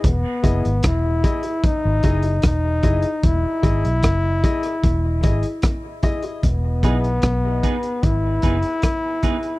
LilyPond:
<<
  \new Staff \with { instrumentName = "Grand piano" } { \time 4/4 \key e \major \tempo 4 = 75 r8 <e' gis' dis''>16 r8. <e' gis' dis''>16 <gis' dis''>16 r8 <e' gis' dis''>16 <gis' dis''>16 r8 <e' gis' dis''>16 r16 | r8 <e' gis' dis''>16 r8. <e' gis' dis''>16 <gis' dis''>16 r8 <e' gis' dis''>16 r8. <e' gis' dis''>16 <e' gis' dis''>16 | r8 <e' gis' dis''>16 r2. r16 | }
  \new Staff \with { instrumentName = "Clean electric guitar" } { \time 4/4 \key e \major r1 | r1 | r8 <b dis' gis' b'>8 r8 <b dis' gis' b'>8 r8 <b dis' gis' b'>8 r8 <b dis' gis' b'>8 | }
  \new Staff \with { instrumentName = "Trombone" } { \time 4/4 \key e \major b4 e'4 dis'4 dis'4 | e'2.~ e'8 r8 | b2 e'2 | }
  \new Staff \with { instrumentName = "Fingered electric bass" } { \clef bass \time 4/4 \key e \major e,,16 r16 fis,,16 gis,,16 e,,8 r8. gis,,16 fis,,8 e,,8 fis,,16 r16 | e,,16 r16 gis,,16 b,,16 fis,,8 r8 e,,8 gis,,16 r4 r16 | e,,8 b,,8 b,,8 r8 gis,,8 fis,,16 r4 r16 | }
  \new DrumStaff \with { instrumentName = "Drums" } \drummode { \time 4/4 <hh bd>8 <hh bd>16 hh16 <hh bd ss>8 <hh bd>16 hh16 <hh bd>8 <hh bd>16 hh16 <hh bd ss>8 <hh bd>16 hh16 | <hh bd>8 <hh bd>16 hh16 <hh bd ss>8 <hh bd>16 hh16 <hh bd>8 <hh bd>16 hh16 <hh bd ss>8 <hh bd>16 hh16 | <hh bd>8 <hh bd>16 hh16 <hh bd ss>8 <hh bd>16 hh16 <hh bd>8 <hh bd>16 hh16 <hh bd ss>8 <hh bd>16 hh16 | }
>>